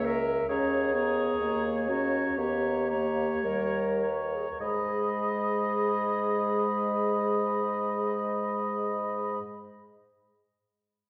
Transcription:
0.00 0.38 C#2 soft
0.00 0.20 A#3 soft
0.05 0.47 A#4 medium
0.05 0.48 E5 soft
0.05 0.49 A#5 soft
0.48 1.30 D#2 soft
0.48 0.95 C#4 soft
0.48 1.91 G#4 medium
0.48 0.93 C#5 soft
0.48 0.93 A#5 soft
0.94 1.40 B3 soft
0.94 1.87 C#5 soft
0.94 1.62 A#5 soft
1.40 2.26 D#2 soft
1.40 1.90 A#3 soft
1.88 2.39 C#4 soft
1.88 2.39 F#4 soft
1.88 2.37 C#5 soft
1.88 2.37 A#5 soft
2.37 3.31 D#2 soft
2.37 2.92 B3 soft
2.37 3.46 G4 medium
2.37 2.88 C#5 soft
2.37 2.88 A#5 soft
2.88 3.45 A#3 soft
2.88 3.85 C#5 soft
2.88 4.00 A#5 soft
3.44 4.48 D#2 soft
3.44 4.02 G3 soft
3.44 4.11 A#4 soft
4.02 4.60 C#5 soft
4.02 4.60 A#5 soft
4.10 4.24 B4 soft
4.23 4.37 A#4 soft
4.35 4.50 G#4 soft
4.48 4.60 A#4 soft
4.60 9.38 G#2 soft
4.60 9.39 G#3 soft
4.60 9.37 G#4 soft
4.60 9.38 D#5 soft
4.60 9.39 B5 soft

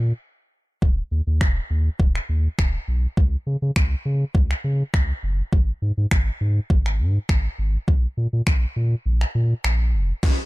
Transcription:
0.00 0.13 A#2 loud
0.82 1.01 D#1 loud
0.82 kick loud
1.11 1.21 D#2 loud
1.27 1.43 D#2 medium
1.41 1.60 D#1 loud
1.41 finger snap loud
1.41 kick loud
1.70 1.89 D#2 medium
2.00 2.19 D#1 loud
2.00 kick loud
2.15 finger snap medium
2.29 2.48 D#2 medium
2.59 2.78 D#1 medium
2.59 finger snap loud
2.59 kick loud
2.88 3.07 B1 medium
3.17 3.36 C#2 loud
3.17 kick loud
3.47 3.57 C#3 medium
3.62 3.71 C#3 loud
3.76 3.95 C#2 loud
3.76 finger snap loud
3.76 kick loud
4.05 4.25 C#3 loud
4.35 4.54 C#2 loud
4.35 kick loud
4.51 finger snap medium
4.64 4.83 C#3 loud
4.94 5.13 C#2 medium
4.94 finger snap loud
4.94 kick loud
5.23 5.42 F#1 medium
5.53 5.72 G#1 loud
5.53 kick loud
5.82 5.92 G#2 medium
5.97 6.06 G#2 medium
6.11 6.31 G#1 loud
6.11 finger snap loud
6.11 kick loud
6.41 6.60 G#2 loud
6.70 7.01 G#1 loud
6.70 kick loud
6.86 finger snap medium
7.00 7.19 G#2 loud
7.29 7.48 G#1 medium
7.29 finger snap loud
7.29 kick loud
7.59 7.78 G#1 medium
7.88 8.07 A#1 loud
7.88 kick loud
8.17 8.27 A#2 loud
8.33 8.42 A#2 loud
8.47 8.66 A#1 loud
8.47 finger snap loud
8.47 kick loud
8.76 8.95 A#2 loud
9.06 9.25 A#1 medium
9.21 finger snap medium
9.35 9.54 A#2 loud
9.64 9.95 A#1 medium
9.64 finger snap loud
9.94 10.13 F1 medium
10.23 kick loud
10.23 snare soft
10.23 crash medium

